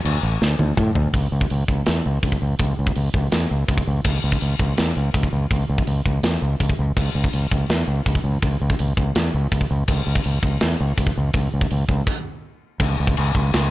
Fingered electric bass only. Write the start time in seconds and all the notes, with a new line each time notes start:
0.05 D2
0.23 A1
0.42 D2
0.59 D2
0.78 A2
0.95 D2
1.14 C#2
1.32 C#2
1.51 C#2
1.68 C#2
1.88 E2
2.06 C#2
2.23 C#2
2.42 C#2
2.60 C#2
2.79 C#2
2.96 C#2
3.14 C#2
3.32 E2
3.51 C#2
3.68 C#2
3.88 C#2
4.05 C#2
4.24 C#2
4.42 C#2
4.60 C#2
4.79 E2
4.97 C#2
5.14 C#2
5.33 C#2
5.51 C#2
5.70 C#2
5.88 C#2
6.06 C#2
6.23 E2
6.42 C#2
6.61 C#2
6.79 C#2
6.97 C#2
7.15 C#2
7.34 C#2
7.51 C#2
7.70 E2
7.88 C#2
8.06 C#2
8.24 C#2
8.43 C#2
8.62 C#2
8.80 C#2
8.97 C#2
9.16 E2
9.34 C#2
9.52 C#2
9.71 C#2
9.88 C#2
10.07 C#2
10.26 C#2
10.43 C#2
10.63 E2
10.81 C#2
10.98 C#2
11.18 C#2
11.35 C#2
11.54 C#2
11.72 C#2
11.89 C#2
12.80 C#2
13.00 C#2
13.19 C#2
13.35 C#2
13.54 C#2